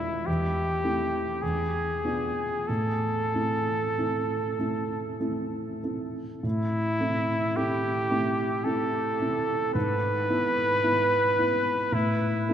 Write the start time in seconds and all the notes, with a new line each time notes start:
Already playing: E2 G#3 D4 E4 F4
0.26 E2 G4
0.84 A3 C4 E4
1.42 E2 G#4
2.04 B3 D4 F4
2.68 A2 A4
3.34 A3 C4 E4
3.97 A3 C4 E4
4.59 A3 C4 E4
5.20 A3 C4 E4
5.84 A3 C4 E4
6.43 A2 E4
7.00 A3 C4 E4
7.57 A3 C4 E4 G4
8.11 A3 C4 E4
8.65 A3 C4 E4 A4
9.20 A3 C4 E4
9.74 G#2 B4
10.30 B3 E4
10.83 B3 E4
11.38 B3 E4
11.92 A2 E4
12.49 A3 C4 E4